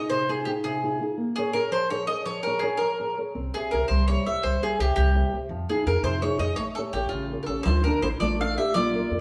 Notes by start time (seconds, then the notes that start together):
Already playing: D#4 F4 G#4
0.10 C3 C5
0.29 D#4 F4 G#4
0.45 D#4 F4 G4 G#4
0.64 C3 G#4
0.84 D#4 F4 G#4
1.00 D#4 F4 G#4
1.17 A#3
1.36 G#4 A#4 C#5
1.53 G#4 A#4 C#5
1.71 F3 C5
1.90 G#4 A#4 C#5
2.07 G#4 A#4 D#5
2.26 F3 C#5
2.43 G#4 A#4
2.47 C#5
2.59 G#4 A#4 C#5
2.77 F3 A#4
3.00 G#4 A#4 C#5
3.18 G#4 A#4 C#5
3.35 C2 C4
3.54 G4 G#4 C5 E5
3.71 C2 G4 A#4 C5 E5
3.88 C2 G3 C5
4.08 G4 C5 C#5 E5
4.26 C2 G4 C5 E5
4.43 C2 G3 C5
4.62 G4 G#4 C5 E5
4.79 C2 G4 C5 E5
4.96 C2 G3 G4
5.16 G4 C5 E5
5.32 C2 G4 C5 E5
5.49 F2 F3
5.69 D#4 F4 G#4
5.86 F2 D#4 F4 G#4 A#4
6.03 F2 C3 C5
6.22 D#4 F4 G#4 C#5
6.39 F2 D#4 F4 G#4 D#5
6.56 A1 A3 C#5
6.75 G4 A4 C#5
6.93 A1 G4 A4 C#5
7.09 A1 C#3 F4
7.33 G4 A4 C#5
7.43 D4 A4 A#4
7.48 A1 C#4 G4 A4 C#5
7.63 D2 D3 F4 C5, riq
7.84 D4 F4 A4 A#4
8.02 A1 D4 E4 F4 A4 C5
8.19 A1 A3 F4 D5, riq
8.39 D4 F4 A4 F5
8.57 D4 F4 G4 A4 E5
8.74 A#1 A#3 F4 D5, riq
8.94 F4 A#4 D5
9.11 F2 F4 A#4 D5